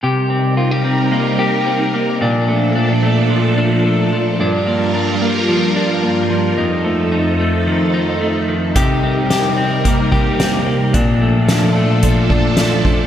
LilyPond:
<<
  \new Staff \with { instrumentName = "String machine" } { \time 4/4 \key c \dorian \tempo 4 = 110 <c g ees' bes'>1 | <bes, f d' a'>1 | <g, g f' bes'>1 | <f, f ees' a'>1 |
<c g ees' bes'>1 | <bes, f d' a'>1 | }
  \new Staff \with { instrumentName = "Clean electric guitar" } { \time 4/4 \key c \dorian <c g'>8 c'8 f'16 g'16 c'8 bes8 g'8 c'8 bes8 | <bes, d'>8 a8 d'8 a8 f8 d'8 a8 f8 | <g, d'>8 bes8 d'8 bes8 f8 d'8 bes8 f8 | <f, ees'>8 a8 ees'8 a8 ees8 ees'8 a8 ees8 |
<c g'>8 c'8 g'8 c'8 bes8 g'8 c'8 bes8 | <bes, d'>8 a8 d'8 a8 f8 d'8 a8 f8 | }
  \new DrumStaff \with { instrumentName = "Drums" } \drummode { \time 4/4 r4 r4 r4 r4 | r4 r4 r4 r4 | r4 r4 r4 r4 | r4 r4 r4 r4 |
<hh bd>4 <hh sn>4 <hh bd>8 bd8 <hh sn>4 | <hh bd>4 <hh sn>4 <hh bd>8 bd8 <hh sn>8 bd8 | }
>>